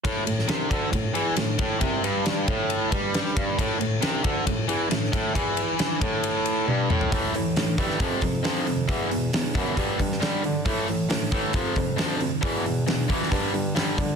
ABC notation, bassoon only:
X:1
M:4/4
L:1/8
Q:1/4=136
K:Am
V:1 name="Bassoon" clef=bass
A,, A,, C,, D,, A,, E,, A,, A,, | C,, G,,2 A,,2 G,,2 G,, | A,, A,, C,, D,, A,, E,, A,, A,, | E,,2 z A,,3 G,, A,, |
A,, A,, A,, G,, F,, F,, F,,2 | E,,2 E,, ^F,, G,, G,, G, D, | A,, A,, A,, A,, F,, F,, D,,2 | E,,2 E,, z G,, G,, G, D, |]